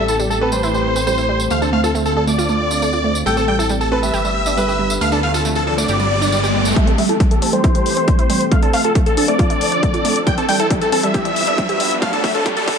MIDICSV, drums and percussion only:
0, 0, Header, 1, 2, 480
1, 0, Start_track
1, 0, Key_signature, 0, "minor"
1, 0, Tempo, 437956
1, 1654, Time_signature, 4, 2, 24, 8
1, 14010, End_track
2, 0, Start_track
2, 0, Title_t, "Drums"
2, 92, Note_on_c, 9, 54, 76
2, 202, Note_off_c, 9, 54, 0
2, 213, Note_on_c, 9, 54, 53
2, 323, Note_off_c, 9, 54, 0
2, 337, Note_on_c, 9, 54, 36
2, 446, Note_off_c, 9, 54, 0
2, 569, Note_on_c, 9, 54, 69
2, 679, Note_off_c, 9, 54, 0
2, 693, Note_on_c, 9, 54, 58
2, 802, Note_off_c, 9, 54, 0
2, 816, Note_on_c, 9, 54, 35
2, 925, Note_off_c, 9, 54, 0
2, 1051, Note_on_c, 9, 54, 77
2, 1160, Note_off_c, 9, 54, 0
2, 1173, Note_on_c, 9, 54, 66
2, 1283, Note_off_c, 9, 54, 0
2, 1290, Note_on_c, 9, 54, 35
2, 1399, Note_off_c, 9, 54, 0
2, 1531, Note_on_c, 9, 54, 77
2, 1641, Note_off_c, 9, 54, 0
2, 1649, Note_on_c, 9, 54, 58
2, 1759, Note_off_c, 9, 54, 0
2, 1775, Note_on_c, 9, 54, 33
2, 1884, Note_off_c, 9, 54, 0
2, 2016, Note_on_c, 9, 54, 64
2, 2125, Note_off_c, 9, 54, 0
2, 2140, Note_on_c, 9, 54, 53
2, 2250, Note_off_c, 9, 54, 0
2, 2252, Note_on_c, 9, 54, 32
2, 2362, Note_off_c, 9, 54, 0
2, 2493, Note_on_c, 9, 54, 72
2, 2603, Note_off_c, 9, 54, 0
2, 2616, Note_on_c, 9, 54, 60
2, 2726, Note_off_c, 9, 54, 0
2, 2727, Note_on_c, 9, 54, 35
2, 2836, Note_off_c, 9, 54, 0
2, 2967, Note_on_c, 9, 54, 73
2, 3077, Note_off_c, 9, 54, 0
2, 3092, Note_on_c, 9, 54, 63
2, 3201, Note_off_c, 9, 54, 0
2, 3210, Note_on_c, 9, 54, 30
2, 3320, Note_off_c, 9, 54, 0
2, 3453, Note_on_c, 9, 54, 70
2, 3563, Note_off_c, 9, 54, 0
2, 3581, Note_on_c, 9, 54, 57
2, 3690, Note_off_c, 9, 54, 0
2, 3694, Note_on_c, 9, 54, 33
2, 3803, Note_off_c, 9, 54, 0
2, 3943, Note_on_c, 9, 54, 65
2, 4049, Note_off_c, 9, 54, 0
2, 4049, Note_on_c, 9, 54, 61
2, 4158, Note_off_c, 9, 54, 0
2, 4177, Note_on_c, 9, 54, 33
2, 4286, Note_off_c, 9, 54, 0
2, 4419, Note_on_c, 9, 54, 69
2, 4528, Note_off_c, 9, 54, 0
2, 4533, Note_on_c, 9, 54, 52
2, 4643, Note_off_c, 9, 54, 0
2, 4655, Note_on_c, 9, 54, 35
2, 4765, Note_off_c, 9, 54, 0
2, 4887, Note_on_c, 9, 54, 68
2, 4997, Note_off_c, 9, 54, 0
2, 5015, Note_on_c, 9, 54, 64
2, 5125, Note_off_c, 9, 54, 0
2, 5138, Note_on_c, 9, 54, 28
2, 5248, Note_off_c, 9, 54, 0
2, 5371, Note_on_c, 9, 54, 67
2, 5480, Note_off_c, 9, 54, 0
2, 5495, Note_on_c, 9, 54, 58
2, 5604, Note_off_c, 9, 54, 0
2, 5610, Note_on_c, 9, 54, 34
2, 5720, Note_off_c, 9, 54, 0
2, 5854, Note_on_c, 9, 54, 69
2, 5964, Note_off_c, 9, 54, 0
2, 5973, Note_on_c, 9, 54, 57
2, 6082, Note_off_c, 9, 54, 0
2, 6086, Note_on_c, 9, 54, 36
2, 6196, Note_off_c, 9, 54, 0
2, 6337, Note_on_c, 9, 54, 73
2, 6447, Note_off_c, 9, 54, 0
2, 6447, Note_on_c, 9, 54, 57
2, 6556, Note_off_c, 9, 54, 0
2, 6570, Note_on_c, 9, 54, 31
2, 6680, Note_off_c, 9, 54, 0
2, 6816, Note_on_c, 9, 54, 62
2, 6926, Note_off_c, 9, 54, 0
2, 6929, Note_on_c, 9, 54, 62
2, 7039, Note_off_c, 9, 54, 0
2, 7055, Note_on_c, 9, 54, 36
2, 7165, Note_off_c, 9, 54, 0
2, 7290, Note_on_c, 9, 54, 74
2, 7399, Note_off_c, 9, 54, 0
2, 7413, Note_on_c, 9, 36, 113
2, 7414, Note_on_c, 9, 42, 80
2, 7523, Note_off_c, 9, 36, 0
2, 7523, Note_off_c, 9, 42, 0
2, 7534, Note_on_c, 9, 42, 49
2, 7643, Note_off_c, 9, 42, 0
2, 7653, Note_on_c, 9, 46, 97
2, 7763, Note_off_c, 9, 46, 0
2, 7773, Note_on_c, 9, 42, 51
2, 7883, Note_off_c, 9, 42, 0
2, 7893, Note_on_c, 9, 36, 112
2, 7893, Note_on_c, 9, 42, 80
2, 8003, Note_off_c, 9, 36, 0
2, 8003, Note_off_c, 9, 42, 0
2, 8013, Note_on_c, 9, 42, 52
2, 8123, Note_off_c, 9, 42, 0
2, 8133, Note_on_c, 9, 46, 99
2, 8243, Note_off_c, 9, 46, 0
2, 8253, Note_on_c, 9, 42, 51
2, 8363, Note_off_c, 9, 42, 0
2, 8373, Note_on_c, 9, 36, 112
2, 8373, Note_on_c, 9, 42, 72
2, 8483, Note_off_c, 9, 36, 0
2, 8483, Note_off_c, 9, 42, 0
2, 8493, Note_on_c, 9, 42, 51
2, 8603, Note_off_c, 9, 42, 0
2, 8613, Note_on_c, 9, 46, 98
2, 8723, Note_off_c, 9, 46, 0
2, 8733, Note_on_c, 9, 42, 50
2, 8843, Note_off_c, 9, 42, 0
2, 8853, Note_on_c, 9, 36, 111
2, 8853, Note_on_c, 9, 42, 76
2, 8963, Note_off_c, 9, 36, 0
2, 8963, Note_off_c, 9, 42, 0
2, 8974, Note_on_c, 9, 42, 52
2, 9083, Note_off_c, 9, 42, 0
2, 9093, Note_on_c, 9, 46, 100
2, 9203, Note_off_c, 9, 46, 0
2, 9213, Note_on_c, 9, 42, 51
2, 9323, Note_off_c, 9, 42, 0
2, 9333, Note_on_c, 9, 36, 119
2, 9333, Note_on_c, 9, 42, 78
2, 9443, Note_off_c, 9, 36, 0
2, 9443, Note_off_c, 9, 42, 0
2, 9453, Note_on_c, 9, 42, 52
2, 9563, Note_off_c, 9, 42, 0
2, 9573, Note_on_c, 9, 46, 106
2, 9683, Note_off_c, 9, 46, 0
2, 9693, Note_on_c, 9, 42, 51
2, 9803, Note_off_c, 9, 42, 0
2, 9813, Note_on_c, 9, 36, 121
2, 9813, Note_on_c, 9, 42, 77
2, 9923, Note_off_c, 9, 36, 0
2, 9923, Note_off_c, 9, 42, 0
2, 9933, Note_on_c, 9, 42, 50
2, 10043, Note_off_c, 9, 42, 0
2, 10053, Note_on_c, 9, 46, 105
2, 10163, Note_off_c, 9, 46, 0
2, 10173, Note_on_c, 9, 42, 54
2, 10283, Note_off_c, 9, 42, 0
2, 10293, Note_on_c, 9, 36, 114
2, 10293, Note_on_c, 9, 42, 74
2, 10403, Note_off_c, 9, 36, 0
2, 10403, Note_off_c, 9, 42, 0
2, 10413, Note_on_c, 9, 42, 52
2, 10523, Note_off_c, 9, 42, 0
2, 10533, Note_on_c, 9, 46, 106
2, 10643, Note_off_c, 9, 46, 0
2, 10653, Note_on_c, 9, 42, 50
2, 10763, Note_off_c, 9, 42, 0
2, 10773, Note_on_c, 9, 36, 118
2, 10773, Note_on_c, 9, 42, 74
2, 10883, Note_off_c, 9, 36, 0
2, 10883, Note_off_c, 9, 42, 0
2, 10893, Note_on_c, 9, 42, 52
2, 11003, Note_off_c, 9, 42, 0
2, 11013, Note_on_c, 9, 46, 109
2, 11123, Note_off_c, 9, 46, 0
2, 11133, Note_on_c, 9, 42, 53
2, 11243, Note_off_c, 9, 42, 0
2, 11253, Note_on_c, 9, 36, 99
2, 11253, Note_on_c, 9, 42, 75
2, 11363, Note_off_c, 9, 36, 0
2, 11363, Note_off_c, 9, 42, 0
2, 11373, Note_on_c, 9, 42, 52
2, 11483, Note_off_c, 9, 42, 0
2, 11493, Note_on_c, 9, 46, 108
2, 11602, Note_off_c, 9, 46, 0
2, 11613, Note_on_c, 9, 42, 52
2, 11722, Note_off_c, 9, 42, 0
2, 11733, Note_on_c, 9, 36, 104
2, 11733, Note_on_c, 9, 42, 80
2, 11842, Note_off_c, 9, 42, 0
2, 11843, Note_off_c, 9, 36, 0
2, 11853, Note_on_c, 9, 42, 49
2, 11963, Note_off_c, 9, 42, 0
2, 11973, Note_on_c, 9, 46, 107
2, 12082, Note_off_c, 9, 46, 0
2, 12093, Note_on_c, 9, 42, 51
2, 12203, Note_off_c, 9, 42, 0
2, 12213, Note_on_c, 9, 36, 104
2, 12213, Note_on_c, 9, 42, 73
2, 12322, Note_off_c, 9, 42, 0
2, 12323, Note_off_c, 9, 36, 0
2, 12333, Note_on_c, 9, 42, 52
2, 12443, Note_off_c, 9, 42, 0
2, 12453, Note_on_c, 9, 46, 105
2, 12562, Note_off_c, 9, 46, 0
2, 12573, Note_on_c, 9, 42, 49
2, 12683, Note_off_c, 9, 42, 0
2, 12693, Note_on_c, 9, 36, 101
2, 12693, Note_on_c, 9, 42, 75
2, 12802, Note_off_c, 9, 36, 0
2, 12803, Note_off_c, 9, 42, 0
2, 12814, Note_on_c, 9, 42, 50
2, 12923, Note_off_c, 9, 42, 0
2, 12933, Note_on_c, 9, 46, 113
2, 13043, Note_off_c, 9, 46, 0
2, 13053, Note_on_c, 9, 42, 53
2, 13163, Note_off_c, 9, 42, 0
2, 13173, Note_on_c, 9, 36, 102
2, 13174, Note_on_c, 9, 42, 77
2, 13283, Note_off_c, 9, 36, 0
2, 13283, Note_off_c, 9, 42, 0
2, 13294, Note_on_c, 9, 42, 50
2, 13403, Note_off_c, 9, 42, 0
2, 13413, Note_on_c, 9, 36, 101
2, 13414, Note_on_c, 9, 46, 107
2, 13523, Note_off_c, 9, 36, 0
2, 13523, Note_off_c, 9, 46, 0
2, 13533, Note_on_c, 9, 42, 51
2, 13643, Note_off_c, 9, 42, 0
2, 13653, Note_on_c, 9, 36, 107
2, 13653, Note_on_c, 9, 42, 79
2, 13763, Note_off_c, 9, 36, 0
2, 13763, Note_off_c, 9, 42, 0
2, 13774, Note_on_c, 9, 42, 50
2, 13883, Note_off_c, 9, 42, 0
2, 13893, Note_on_c, 9, 36, 109
2, 13893, Note_on_c, 9, 46, 115
2, 14003, Note_off_c, 9, 36, 0
2, 14003, Note_off_c, 9, 46, 0
2, 14010, End_track
0, 0, End_of_file